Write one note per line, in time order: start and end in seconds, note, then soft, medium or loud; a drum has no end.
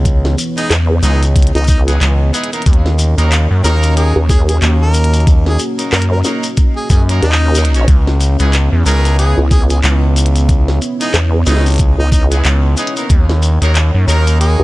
0.00 0.36 C#2 loud
0.00 2.63 E3 medium
0.00 2.63 B3 medium
0.00 13.06 C#4 medium
0.00 2.63 C#5 medium
0.05 kick loud
0.05 closed hi-hat medium
0.05 shekere soft
0.25 snare medium
0.38 closed hi-hat soft
0.38 shekere loud
0.57 0.72 G#3 medium
0.57 0.72 B3 medium
0.57 0.72 D#4 medium
0.57 0.73 D#4 loud
0.57 0.72 E4 medium
0.57 0.72 G#4 medium
0.57 closed hi-hat medium
0.57 shekere medium
0.70 1.01 E2 loud
0.70 clap loud
0.70 closed hi-hat medium
0.70 shekere soft
1.03 1.52 C#2 medium
1.03 1.23 G#3 medium
1.03 1.23 B3 medium
1.03 1.23 D#4 medium
1.03 1.24 D#4 medium
1.03 1.23 E4 medium
1.03 1.23 G#4 medium
1.03 closed hi-hat soft
1.03 shekere medium
1.23 closed hi-hat medium
1.23 shekere medium
1.36 kick loud
1.36 closed hi-hat medium
1.36 shekere soft
1.42 closed hi-hat medium
1.47 closed hi-hat soft
1.55 1.99 C#2 loud
1.55 1.64 D#4 medium
1.55 closed hi-hat soft
1.58 closed hi-hat soft
1.64 closed hi-hat soft
1.64 shekere loud
1.68 1.81 D#4 medium
1.68 kick loud
1.68 closed hi-hat soft
1.88 2.02 G#3 medium
1.88 2.02 B3 medium
1.88 2.02 D#4 medium
1.88 2.02 E4 medium
1.88 2.02 G#4 loud
1.88 closed hi-hat medium
1.88 shekere medium
2.01 2.31 C#2 loud
2.01 clap loud
2.01 closed hi-hat medium
2.01 shekere soft
2.34 2.50 G#3 loud
2.34 2.50 B3 medium
2.34 2.50 D#4 medium
2.34 2.50 E4 medium
2.34 2.50 G#4 loud
2.34 closed hi-hat medium
2.34 shekere loud
2.44 closed hi-hat medium
2.53 2.65 A#3 medium
2.53 2.65 B3 medium
2.53 2.65 D#4 medium
2.53 2.65 E4 medium
2.53 2.65 A#4 medium
2.53 closed hi-hat medium
2.53 shekere medium
2.62 closed hi-hat soft
2.66 3.15 D#2 medium
2.66 7.84 A#3 medium
2.66 7.84 F#4 medium
2.66 5.25 C#5 medium
2.66 kick loud
2.66 closed hi-hat medium
2.66 shekere soft
2.73 closed hi-hat soft
2.86 snare medium
2.99 closed hi-hat soft
2.99 shekere loud
3.18 3.47 D#2 loud
3.18 3.33 A#3 loud
3.18 3.33 C#4 medium
3.18 3.33 D#4 medium
3.18 3.33 F#4 medium
3.18 3.33 A#4 loud
3.18 closed hi-hat medium
3.18 shekere medium
3.32 clap loud
3.32 closed hi-hat medium
3.32 shekere soft
3.51 3.62 F#2 loud
3.64 4.13 D#2 loud
3.64 3.94 A#3 loud
3.64 3.94 C#4 loud
3.64 3.94 D#4 medium
3.64 3.94 F#4 medium
3.64 3.94 A#4 loud
3.64 3.94 A#4 medium
3.64 snare medium
3.64 shekere loud
3.83 closed hi-hat medium
3.83 shekere medium
3.97 4.17 A#3 medium
3.97 4.17 C#4 medium
3.97 4.17 D#4 medium
3.97 4.17 F#4 medium
3.97 4.17 G#4 medium
3.97 4.17 A#4 medium
3.97 closed hi-hat medium
3.97 shekere soft
4.16 4.60 D#2 loud
4.29 4.42 G#4 medium
4.29 kick loud
4.29 snare soft
4.29 closed hi-hat soft
4.29 shekere medium
4.49 4.57 G#4 medium
4.49 closed hi-hat medium
4.49 shekere medium
4.62 5.58 D#2 loud
4.62 clap loud
4.62 closed hi-hat medium
4.62 shekere soft
4.82 5.27 A#4 loud
4.94 closed hi-hat soft
4.94 shekere medium
5.04 closed hi-hat medium
5.14 closed hi-hat medium
5.14 shekere medium
5.20 closed hi-hat soft
5.27 7.85 D#5 loud
5.27 kick loud
5.27 closed hi-hat medium
5.27 shekere soft
5.46 5.62 G#4 medium
5.46 snare medium
5.59 closed hi-hat soft
5.59 shekere loud
5.79 5.94 A#3 medium
5.79 5.94 C#4 medium
5.79 5.93 D#4 medium
5.79 5.93 F#4 medium
5.79 5.94 A#4 medium
5.79 closed hi-hat medium
5.79 shekere medium
5.92 6.23 F#2 loud
5.92 6.05 A#4 medium
5.92 clap loud
5.92 shekere soft
6.02 closed hi-hat medium
6.12 6.20 A#4 medium
6.24 6.45 A#3 medium
6.24 6.45 C#4 medium
6.24 6.45 D#4 medium
6.24 6.45 F#4 medium
6.24 6.45 A#4 medium
6.24 snare medium
6.24 shekere loud
6.43 closed hi-hat medium
6.43 shekere medium
6.57 kick loud
6.57 closed hi-hat medium
6.57 shekere soft
6.76 6.85 G#4 medium
6.90 7.21 F#2 loud
6.90 7.02 G#4 medium
6.90 kick loud
6.90 closed hi-hat soft
6.90 shekere medium
7.09 7.24 A#3 medium
7.09 7.24 C#4 medium
7.09 7.24 D#4 medium
7.09 7.24 F#4 medium
7.09 7.24 A#4 loud
7.09 closed hi-hat medium
7.09 shekere soft
7.23 7.86 D#2 loud
7.23 7.75 D#4 loud
7.23 closed hi-hat medium
7.23 shekere soft
7.32 clap loud
7.55 7.72 A#3 medium
7.55 7.72 C#4 medium
7.55 7.72 D#4 medium
7.55 7.72 F#4 medium
7.55 7.72 A#4 loud
7.55 closed hi-hat soft
7.55 shekere loud
7.65 closed hi-hat medium
7.75 7.87 C#4 medium
7.75 7.87 D#4 medium
7.75 7.87 F#4 medium
7.75 7.87 C#5 medium
7.75 closed hi-hat medium
7.75 shekere medium
7.88 8.37 C#2 loud
7.88 13.06 B3 medium
7.88 13.06 E4 medium
7.88 14.64 C#5 medium
7.88 kick loud
7.88 closed hi-hat medium
7.88 shekere soft
8.07 snare medium
8.21 closed hi-hat soft
8.21 shekere medium
8.39 8.69 C#2 loud
8.39 8.54 G#3 medium
8.39 8.54 B3 medium
8.39 8.54 D#4 medium
8.39 8.54 E4 medium
8.39 8.54 G#4 loud
8.39 closed hi-hat medium
8.39 shekere medium
8.52 clap loud
8.52 closed hi-hat medium
8.52 shekere soft
8.72 8.84 E2 loud
8.86 9.35 C#2 loud
8.86 9.15 G#3 loud
8.86 9.15 B3 loud
8.86 9.15 D#4 medium
8.86 9.15 E4 medium
8.86 9.15 G#4 loud
8.86 9.16 A#4 medium
8.86 shekere medium
9.05 closed hi-hat soft
9.05 shekere medium
9.18 9.39 G#3 medium
9.18 9.39 B3 medium
9.18 9.39 D#4 medium
9.18 9.39 E4 medium
9.18 9.39 G#4 medium
9.18 closed hi-hat medium
9.18 shekere soft
9.38 9.82 C#2 loud
9.51 9.64 G#4 medium
9.51 kick loud
9.51 snare soft
9.51 closed hi-hat soft
9.51 shekere medium
9.70 9.79 G#4 medium
9.70 closed hi-hat medium
9.70 shekere medium
9.84 10.79 C#2 loud
9.84 clap loud
9.84 closed hi-hat soft
9.84 shekere soft
10.16 closed hi-hat soft
10.16 shekere loud
10.26 closed hi-hat medium
10.36 closed hi-hat medium
10.36 shekere medium
10.49 kick loud
10.49 closed hi-hat medium
10.49 shekere soft
10.68 snare medium
10.82 closed hi-hat soft
10.82 shekere loud
11.01 11.15 G#3 medium
11.01 11.15 B3 medium
11.01 11.16 D#4 loud
11.01 11.15 D#4 medium
11.01 11.15 E4 medium
11.01 11.15 G#4 medium
11.01 closed hi-hat medium
11.01 shekere medium
11.14 11.44 E2 loud
11.14 clap loud
11.14 closed hi-hat medium
11.14 shekere soft
11.46 11.96 C#2 loud
11.46 11.67 G#3 medium
11.46 11.67 B3 medium
11.46 11.67 D#4 medium
11.46 11.67 E4 medium
11.46 11.67 G#4 medium
11.46 snare medium
11.46 closed hi-hat soft
11.46 shekere medium
11.52 snare soft
11.57 snare soft
11.61 snare soft
11.66 snare soft
11.66 closed hi-hat soft
11.66 shekere medium
11.68 snare soft
11.68 closed hi-hat soft
11.70 closed hi-hat soft
11.72 snare soft
11.72 closed hi-hat soft
11.74 closed hi-hat soft
11.76 snare soft
11.76 closed hi-hat soft
11.78 kick loud
11.78 closed hi-hat soft
11.78 shekere soft
11.80 closed hi-hat medium
11.98 12.42 C#2 loud
11.98 12.07 D#4 medium
12.12 12.24 D#4 medium
12.12 kick loud
12.12 closed hi-hat soft
12.12 shekere medium
12.31 12.46 G#3 medium
12.31 12.46 B3 medium
12.31 12.46 D#4 medium
12.31 12.46 E4 medium
12.31 12.46 G#4 loud
12.31 closed hi-hat medium
12.31 shekere medium
12.45 12.75 C#2 loud
12.45 clap loud
12.45 closed hi-hat medium
12.45 shekere soft
12.77 12.94 G#3 loud
12.77 12.93 B3 medium
12.77 12.94 D#4 medium
12.77 12.94 E4 medium
12.77 12.94 G#4 loud
12.77 closed hi-hat soft
12.77 shekere medium
12.87 closed hi-hat medium
12.96 13.08 A#3 medium
12.96 13.08 B3 medium
12.96 13.08 D#4 medium
12.96 13.08 E4 medium
12.96 13.08 A#4 loud
12.96 closed hi-hat medium
12.96 shekere medium
13.09 13.59 D#2 loud
13.09 14.64 A#3 medium
13.09 14.64 D#4 medium
13.09 14.64 F#4 medium
13.09 kick loud
13.09 closed hi-hat medium
13.09 shekere soft
13.29 snare medium
13.43 closed hi-hat soft
13.43 shekere medium
13.62 13.91 D#2 loud
13.62 13.76 A#3 loud
13.62 13.76 C#4 medium
13.62 13.76 D#4 medium
13.62 13.76 F#4 medium
13.62 13.76 A#4 loud
13.62 closed hi-hat medium
13.62 shekere medium
13.75 clap loud
13.75 closed hi-hat medium
13.75 shekere soft
13.94 14.06 F#2 loud
14.08 14.56 D#2 loud
14.08 14.37 A#3 loud
14.08 14.37 C#4 loud
14.08 14.37 D#4 medium
14.08 14.37 F#4 loud
14.08 14.38 A#4 medium
14.08 14.37 A#4 loud
14.08 shekere medium
14.27 closed hi-hat medium
14.27 shekere medium
14.40 14.61 A#3 medium
14.40 14.60 C#4 medium
14.40 14.61 D#4 medium
14.40 14.61 F#4 medium
14.40 14.61 G#4 medium
14.40 14.61 A#4 medium
14.40 closed hi-hat medium
14.40 shekere soft
14.60 14.64 D#2 loud